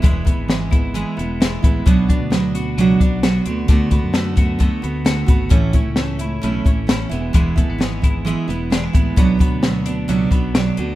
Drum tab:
HH |xxxxxxxx|xxxxxxxx|xxxxxxxx|xxxxxxxx|
SD |--o---o-|--o---o-|--o---o-|--o---o-|
BD |oo-o---o|oo---o--|oo-oo--o|oo---o--|

HH |xxxxxxxx|xxxxxxxx|
SD |--o---o-|--o---o-|
BD |oo-o---o|oo---o--|